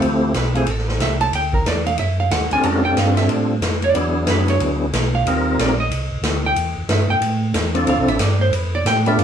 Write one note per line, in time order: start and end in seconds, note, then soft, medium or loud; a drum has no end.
0.00 0.32 D2 medium
0.00 0.34 D2 medium
0.00 0.33 F3 medium
0.00 0.33 A3 medium
0.00 0.33 C4 medium
0.00 0.33 E4 medium
0.00 0.33 G4 loud
0.00 ride medium
0.34 0.67 B1 medium
0.34 0.56 B4 medium
0.34 snare medium
0.34 hi-hat pedal soft
0.34 ride medium
0.55 0.66 F3 medium
0.55 0.67 A3 medium
0.55 0.67 C4 medium
0.55 0.67 E4 medium
0.55 0.68 G4 medium
0.55 0.70 G#4 medium
0.55 ride soft
0.66 0.99 A1 medium
0.66 0.89 A4 medium
0.66 ride medium
0.78 snare soft
0.89 1.00 C5 medium
0.89 snare soft
0.99 1.32 C2 medium
0.99 1.21 E5 medium
0.99 snare medium
0.99 hi-hat pedal medium
0.99 ride medium
1.21 1.33 A5 loud
1.21 ride soft
1.32 1.64 D2 medium
1.32 1.54 G5 medium
1.32 ride medium
1.53 1.66 A#4 medium
1.53 kick medium
1.65 1.98 E2 medium
1.65 1.86 D5 medium
1.65 snare medium
1.65 hi-hat pedal soft
1.65 ride medium
1.86 1.98 F5 loud
1.86 ride soft
1.98 2.31 F#2 medium
1.98 2.19 E5 medium
1.98 ride medium
2.20 2.32 F5 medium
2.31 2.50 D#2 medium
2.31 2.52 F#5 loud
2.31 snare medium
2.31 hi-hat pedal medium
2.31 ride medium
2.51 2.57 D#2 soft
2.51 2.83 G3 medium
2.51 2.84 C4 medium
2.51 2.84 D4 medium
2.51 2.85 F4 medium
2.51 2.86 A4 medium
2.51 2.64 G#5 medium
2.51 ride soft
2.63 2.96 F2 medium
2.63 2.83 G#3 medium
2.63 2.83 C#4 medium
2.63 2.83 D#4 medium
2.63 2.83 F#4 medium
2.63 2.84 A#4 medium
2.63 2.84 A5 loud
2.63 ride medium
2.85 3.55 G3 medium
2.85 3.55 C4 medium
2.85 3.56 D4 medium
2.85 3.56 F4 medium
2.85 3.56 A4 medium
2.85 2.97 G5 medium
2.97 3.29 G2 medium
2.97 3.17 F5 medium
2.97 snare medium
2.97 hi-hat pedal medium
2.97 ride medium
3.17 3.32 E5 medium
3.17 snare soft
3.17 ride medium
3.29 3.61 A2 medium
3.29 3.44 D5 loud
3.29 ride medium
3.61 3.94 F2 medium
3.61 snare medium
3.61 hi-hat pedal medium
3.61 ride medium
3.82 4.25 D5 medium
3.82 ride soft
3.94 4.27 E2 medium
3.94 4.86 F#3 medium
3.94 4.86 B3 medium
3.94 4.86 D4 medium
3.94 4.87 E4 medium
3.94 4.87 G#4 medium
3.94 ride medium
4.27 4.59 F#2 medium
4.27 4.50 B4 medium
4.27 snare medium
4.27 hi-hat pedal medium
4.27 ride medium
4.48 4.94 C#5 medium
4.48 ride medium
4.60 4.92 D2 medium
4.60 ride medium
4.93 5.25 B1 medium
4.93 snare medium
4.93 hi-hat pedal medium
4.93 ride medium
5.15 5.56 F5 loud
5.26 5.58 D#2 medium
5.26 5.75 G3 medium
5.26 5.76 C4 medium
5.26 5.76 D#4 medium
5.26 5.76 F4 medium
5.26 5.76 A#4 medium
5.26 ride medium
5.58 5.90 A#1 medium
5.58 5.80 D5 medium
5.58 snare medium
5.58 hi-hat pedal medium
5.58 ride medium
5.80 6.21 D#5 medium
5.90 6.10 C2 medium
5.90 ride medium
6.11 6.17 C2 soft
6.22 6.55 D2 medium
6.22 snare medium
6.22 hi-hat pedal medium
6.22 ride medium
6.46 6.87 G5 loud
6.55 6.75 E2 medium
6.55 ride medium
6.77 6.83 E2 soft
6.88 7.08 G2 medium
6.88 7.10 E5 medium
6.88 snare medium
6.88 hi-hat pedal soft
6.88 ride medium
7.09 7.15 G2 soft
7.09 7.52 G5 loud
7.20 7.53 A2 medium
7.20 ride medium
7.54 7.86 E2 medium
7.54 snare medium
7.54 hi-hat pedal medium
7.54 ride medium
7.74 8.17 F3 medium
7.74 8.17 C4 medium
7.74 8.18 D4 medium
7.74 8.18 E4 medium
7.74 8.18 A4 medium
7.74 ride soft
7.87 7.98 D2 medium
7.87 8.08 F5 medium
7.87 ride medium
7.98 8.09 C2 medium
8.08 8.19 A1 medium
8.08 8.22 E5 medium
8.08 ride soft
8.18 8.51 G2 medium
8.18 8.41 D5 medium
8.18 snare medium
8.18 hi-hat pedal medium
8.18 ride medium
8.41 8.55 C5 medium
8.51 8.84 F2 medium
8.51 8.74 B4 medium
8.51 ride medium
8.75 8.86 D5 medium
8.84 9.17 A2 medium
8.84 9.06 G5 loud
8.84 snare medium
8.84 hi-hat pedal medium
8.84 ride medium
9.06 9.24 G3 medium
9.06 9.24 B3 medium
9.06 9.24 D4 medium
9.06 9.24 F4 medium
9.06 9.24 A4 medium
9.06 9.19 E5 loud
9.06 ride soft
9.17 9.24 G2 medium
9.17 9.24 F5 medium
9.17 ride medium